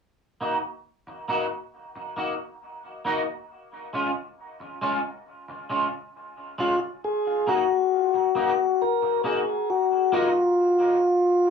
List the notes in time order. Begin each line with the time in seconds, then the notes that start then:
0.40 A#3 D#4 F#4
1.07 muted clean electric guitar stroke
1.28 A#3 D#4 F#4
1.96 muted clean electric guitar stroke
2.17 A#3 D#4 F#4
3.05 A#3 D#4 F#4
3.93 G#3 C#4 F4
4.60 muted clean electric guitar stroke
4.82 G#3 C#4 F4
5.48 muted clean electric guitar stroke
5.70 G#3 C#4 F4
6.58 G#3 C#4 F4
7.04 G#4
7.47 A#3 D#4 F#4
8.14 muted clean electric guitar stroke
8.35 A#3 D#4 F#4
8.82 A#4
9.02 muted clean electric guitar stroke
9.24 A#3 D#4 F#4 G#4
9.70 F#4
10.12 A#3 D#4 F4 F#4